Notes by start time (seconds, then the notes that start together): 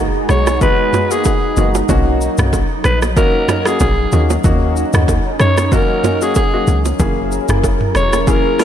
Already playing: G#3 D#4 F#4 G#4 A#5
0.29 B1 C#5, cross-stick, shaker
0.47 cross-stick, low bongo, shaker
0.61 G#3 B3 D#4 F#4 B4, kick, low conga, shaker
0.93 mid tom, low bongo, shaker
1.11 A#3 B3 D#4 F#4 G#4, shaker
1.24 G#4, kick, high bongo, shaker
1.57 F#1 A#3 B3 D#4 F#4, low conga, shaker
1.75 low bongo, shaker
1.89 B1 F#3 A#3 C#4 D#4 F#4, kick, low conga, shaker
2.21 shaker
2.38 B1 A#3 C#4 D#4 F#4, cross-stick, mid tom, shaker
2.53 kick, high bongo, shaker
2.84 A#1 B4, cross-stick, shaker
3.02 cross-stick, low bongo, shaker
3.16 A#3 C#4 D#4 F#4 A#4, kick, low conga, shaker
3.48 cross-stick, mid tom, low bongo, shaker
3.65 A#3 C#4 D#4 F#4 G#4, cross-stick, shaker
3.80 A#1 G#4, kick, high bongo, shaker
4.12 D#2 A#3 C#4 D#4 F#4, low conga, shaker
4.30 low bongo, shaker
4.44 D#2 F#3 A#3 C#4 D#4 F#4, kick, low conga, shaker
4.76 shaker
4.93 D#2 A#3 C#4 D#4 F#4, cross-stick, mid tom, shaker
5.08 kick, high bongo, shaker
5.40 F#2 C#5, cross-stick, shaker
5.57 cross-stick, low bongo, shaker
5.67 C#5
5.72 A#3 C#4 D#4 F#4 A#4, kick, low conga, shaker
6.04 mid tom, low bongo, shaker
6.21 A#3 C#4 D#4 F#4 G#4, shaker
6.35 G#4, kick, high bongo, shaker
6.53 A#3 C#4 D#4 F#4
6.67 C#2, low conga, shaker
6.85 low bongo, shaker
6.99 F#1 A#3 C#4 E4 G#4 A#4, kick, low conga, shaker
7.32 shaker
7.49 F#1 A#3 C#4 E4 G#4, cross-stick, mid tom, shaker
7.64 kick, high bongo, shaker
7.81 mid tom
7.95 E1 C#5, cross-stick, shaker
8.13 cross-stick, low bongo, shaker
8.22 C#5
8.27 A#3 C#4 E4 G#4 A#4, kick, low conga, shaker
8.59 A#4, cross-stick, open hi-hat, low bongo, shaker